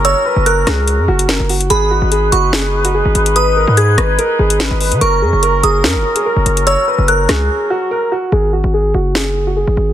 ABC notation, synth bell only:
X:1
M:4/4
L:1/8
Q:1/4=145
K:G#m
V:1 name="Synth bell"
e'2 f'2 z4 | b3 c'4- c' | d'2 g'2 z4 | c'3 d'4- d' |
e'2 f'2 z4 | z8 |]